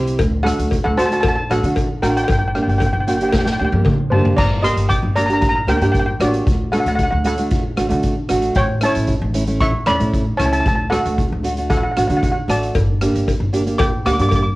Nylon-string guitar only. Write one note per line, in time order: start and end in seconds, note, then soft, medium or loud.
0.00 0.19 C4 medium
0.00 0.19 E4 medium
0.00 0.19 G4 medium
0.45 0.77 A3 medium
0.45 0.76 D4 medium
0.45 0.77 F#4 medium
0.97 1.05 A3 medium
0.97 1.06 D4 medium
0.97 1.06 F#4 medium
1.11 1.34 A3 medium
1.11 1.35 D4 medium
1.11 1.35 F#4 medium
1.50 1.58 A3 medium
1.50 1.58 D4 medium
1.50 1.58 F#4 medium
1.64 1.87 A3 medium
1.64 1.87 D4 medium
1.64 1.88 F#4 medium
2.03 2.29 A3 medium
2.03 2.29 D4 medium
2.03 2.29 F#4 medium
2.55 2.86 A#3 medium
2.55 2.86 D4 medium
2.55 2.86 G4 medium
3.07 3.15 A#3 medium
3.07 3.15 D4 medium
3.07 3.15 F#4 medium
3.21 3.44 A#3 medium
3.21 3.44 D4 medium
3.21 3.44 G4 medium
3.60 3.68 A#3 medium
3.60 3.68 D4 medium
3.60 3.68 G4 medium
3.73 3.96 A#3 medium
3.73 3.96 D4 medium
3.73 3.96 G4 medium
4.12 4.38 A#3 medium
4.12 4.38 D4 medium
4.12 4.38 G4 medium
4.62 4.95 A#3 medium
4.62 4.95 D4 medium
4.62 4.95 G4 medium
5.17 5.25 A#3 medium
5.17 5.25 D4 medium
5.17 5.25 G4 medium
5.29 5.53 A#3 medium
5.29 5.53 D4 medium
5.29 5.53 G4 medium
5.67 5.76 A#3 medium
5.67 5.76 D4 medium
5.67 5.76 G4 medium
5.82 6.05 A#3 medium
5.82 6.05 D4 medium
5.82 6.05 G4 medium
6.20 6.47 A#3 medium
6.20 6.47 D4 medium
6.20 6.47 G4 medium
6.73 7.05 A3 medium
6.73 7.05 D4 medium
6.73 7.05 F#4 medium
7.24 7.33 A3 medium
7.24 7.33 D4 medium
7.24 7.33 F#4 medium
7.38 7.62 A3 medium
7.38 7.62 D4 medium
7.38 7.62 F#4 medium
7.76 7.85 A3 medium
7.76 7.85 D4 medium
7.76 7.85 F#4 medium
7.89 8.14 A3 medium
7.89 8.14 D4 medium
7.89 8.14 F#4 loud
8.28 8.55 A3 medium
8.28 8.56 D4 medium
8.28 8.56 F#4 loud
8.82 9.14 A3 medium
8.82 9.14 C#4 medium
8.82 9.14 E4 medium
9.34 9.43 A3 medium
9.34 9.43 C#4 medium
9.34 9.43 E4 medium
9.47 9.71 A3 medium
9.47 9.71 C#4 medium
9.47 9.72 E4 medium
9.87 9.95 A3 medium
9.87 9.96 C#4 medium
9.87 9.95 E4 medium
10.00 10.24 A3 medium
10.00 10.24 C#4 medium
10.00 10.24 E4 medium
10.39 10.65 A3 medium
10.39 10.65 C#4 medium
10.39 10.66 E4 medium
10.91 11.23 A3 medium
10.91 11.23 D4 medium
10.91 11.23 F#4 medium
11.43 11.52 A3 medium
11.43 11.52 D4 medium
11.43 11.52 F#4 medium
11.58 11.81 A3 medium
11.58 11.81 D4 medium
11.58 11.81 F#4 medium
11.96 12.04 A3 medium
11.96 12.04 D4 medium
11.96 12.05 F#4 medium
12.10 12.33 A3 medium
12.10 12.33 D4 medium
12.10 12.34 F#4 medium
12.48 12.75 A3 medium
12.48 12.75 D4 medium
12.48 12.75 F#4 medium
13.01 13.33 A#3 medium
13.01 13.33 D4 medium
13.01 13.33 G4 medium
13.53 13.61 A#3 medium
13.53 13.61 D4 medium
13.53 13.62 G4 loud
13.66 13.90 A#3 medium
13.66 13.90 D4 medium
13.66 13.91 G4 medium
14.05 14.14 A#3 medium
14.05 14.14 D4 medium
14.05 14.14 G4 medium
14.19 14.43 A#3 medium
14.19 14.43 D4 medium
14.19 14.43 G4 medium